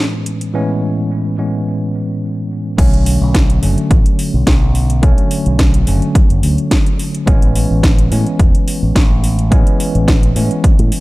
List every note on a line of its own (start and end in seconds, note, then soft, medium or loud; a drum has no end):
0.00 0.51 A2 medium
0.00 0.51 E3 medium
0.00 0.51 G#3 medium
0.00 0.52 B3 medium
0.00 0.52 C#4 medium
0.26 closed hi-hat medium
0.41 closed hi-hat soft
0.53 1.35 A2 medium
0.53 1.35 E3 medium
0.53 1.35 G#3 medium
0.53 1.36 B3 medium
0.53 1.36 C#4 loud
1.37 2.75 A2 medium
1.37 2.75 E3 medium
1.37 2.75 G#3 medium
1.37 2.76 B3 medium
1.37 2.76 C#4 medium
2.77 3.17 B1 loud
2.77 3.59 D3 loud
2.77 3.59 F#3 medium
2.77 3.60 A3 medium
2.77 3.60 C#4 loud
2.77 kick loud
2.77 closed hi-hat medium
2.77 crash loud
2.94 closed hi-hat soft
3.06 open hi-hat loud
3.21 3.59 B1 medium
3.35 kick loud
3.35 snare loud
3.35 closed hi-hat medium
3.50 closed hi-hat medium
3.62 3.75 F#1 medium
3.62 4.99 D3 medium
3.62 5.00 F#3 medium
3.62 5.00 A3 medium
3.62 5.00 C#4 medium
3.62 open hi-hat medium
3.78 closed hi-hat soft
3.91 4.03 A1 medium
3.91 kick loud
3.91 closed hi-hat medium
4.06 closed hi-hat soft
4.19 open hi-hat loud
4.34 4.44 B1 medium
4.47 5.13 B1 loud
4.47 kick loud
4.47 snare loud
4.47 closed hi-hat medium
4.75 open hi-hat medium
4.90 closed hi-hat medium
5.02 5.84 D3 loud
5.02 5.84 F#3 medium
5.02 5.84 A3 medium
5.02 5.85 C#4 loud
5.02 kick loud
5.02 closed hi-hat medium
5.18 closed hi-hat soft
5.31 open hi-hat loud
5.46 5.83 B1 medium
5.46 closed hi-hat soft
5.59 kick loud
5.59 snare loud
5.59 closed hi-hat medium
5.74 closed hi-hat medium
5.86 5.99 F#1 loud
5.86 7.24 D3 medium
5.86 7.24 F#3 medium
5.86 7.24 A3 medium
5.86 7.25 C#4 medium
5.86 open hi-hat loud
6.02 closed hi-hat soft
6.15 kick loud
6.15 closed hi-hat medium
6.30 6.41 F#1 medium
6.30 closed hi-hat soft
6.43 6.55 D2 medium
6.43 open hi-hat loud
6.58 closed hi-hat soft
6.71 kick loud
6.71 snare loud
6.71 closed hi-hat medium
6.86 closed hi-hat soft
6.99 open hi-hat medium
7.15 closed hi-hat medium
7.26 7.66 A1 loud
7.26 8.08 E3 loud
7.26 8.08 G#3 medium
7.26 8.08 B3 medium
7.26 8.09 C#4 loud
7.26 kick loud
7.26 closed hi-hat medium
7.42 closed hi-hat soft
7.55 open hi-hat loud
7.71 8.07 A1 medium
7.83 kick loud
7.83 snare loud
7.83 closed hi-hat medium
7.99 closed hi-hat soft
8.10 8.24 A2 loud
8.10 9.48 E3 medium
8.10 9.48 G#3 medium
8.10 9.49 B3 medium
8.10 9.49 C#4 medium
8.10 open hi-hat loud
8.27 closed hi-hat soft
8.39 8.51 E1 medium
8.39 kick loud
8.39 closed hi-hat medium
8.55 closed hi-hat soft
8.68 open hi-hat loud
8.83 8.93 A1 medium
8.96 9.62 A1 loud
8.96 kick loud
8.96 snare loud
8.96 closed hi-hat medium
9.24 open hi-hat loud
9.39 closed hi-hat medium
9.50 10.32 E3 loud
9.50 10.32 G#3 medium
9.50 10.33 B3 medium
9.50 10.33 C#4 loud
9.50 kick loud
9.50 closed hi-hat medium
9.67 closed hi-hat soft
9.80 open hi-hat loud
9.95 10.32 A1 medium
9.95 closed hi-hat soft
10.08 kick loud
10.08 snare loud
10.08 closed hi-hat medium
10.23 closed hi-hat soft
10.35 10.48 A2 loud
10.35 11.00 E3 medium
10.35 11.00 G#3 medium
10.35 11.00 B3 medium
10.35 11.00 C#4 medium
10.35 open hi-hat loud
10.51 closed hi-hat soft
10.64 kick loud
10.64 closed hi-hat medium
10.79 10.89 A2 medium
10.79 closed hi-hat soft
10.92 open hi-hat loud